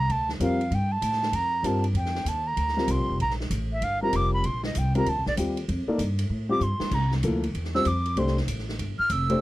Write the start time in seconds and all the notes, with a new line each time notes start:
Already playing: A#5
0.09 D2 A5, ride
0.29 snare
0.40 F2 G3 C4 F4 A#4 F5, hi-hat pedal, ride
0.61 ride
0.71 G2 G5, ride
0.92 A5
1.02 A2, hi-hat pedal, ride
1.12 snare
1.23 snare
1.32 F2 A#5, ride
1.63 G2 G3 C4 F4 A#4 A5, hi-hat pedal, ride
1.84 ride
1.94 F2 G5, ride
2.05 snare
2.15 snare
2.25 D#2 A5, hi-hat pedal, ride
2.47 A#5
2.57 D2, ride
2.68 snare
2.77 G3 C4 F4 A#4, snare
2.88 C2 C6, hi-hat pedal, ride
2.98 A#1
3.09 F1
3.20 A#1 A#5, ride
3.30 snare
3.40 snare
3.50 A1, hi-hat pedal, ride
3.73 E5
3.81 G1 F5, ride
4.02 G3 C4 F4 A#4 A#5
4.13 F1 D6, hi-hat pedal, ride
4.34 B5
4.44 A#1 C6, ride
4.63 D#5, snare
4.75 C2 G5, hi-hat pedal, ride
4.95 G3 C4 F4 A#4 A#5, ride
5.06 D2 A5, ride
5.17 C2
5.26 A#1 D5, snare
5.37 D#2 G3 C4 F4 G4, hi-hat pedal, ride
5.57 ride
5.68 F2, ride
5.87 A#3 D#4 A4 D5, muted upright bass stroke
5.98 G2, hi-hat pedal, ride
6.19 ride
6.30 A2
6.49 G3 C4 F4 G4 D6
6.60 G2 C6, hi-hat pedal
6.80 muted upright bass stroke, snare
6.91 C2 A#5, kick, crash
7.11 snare
7.23 D2 F3 A#3 E4 A4, hi-hat pedal, ride
7.43 ride
7.54 E2, ride
7.64 snare
7.75 G3 C4 F4 C5 E6, snare
7.85 F2 D6, hi-hat pedal, ride
8.06 ride
8.16 C2 A3 D4 G4 C5 C6, ride
8.27 snare
8.37 snare
8.47 A1, hi-hat pedal, ride
8.58 snare
8.69 snare
8.79 G1, ride
8.99 F6, muted upright bass stroke
9.10 F1 E6, hi-hat pedal, ride
9.29 A3 D4 G4 C5, ride